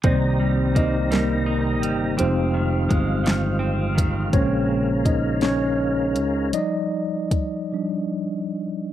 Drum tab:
HH |x-xx-x|x-xx-x|x-xx-x|x-x---|
SD |---o--|---o--|---o--|------|
BD |o-o---|--o--o|o-o---|--o---|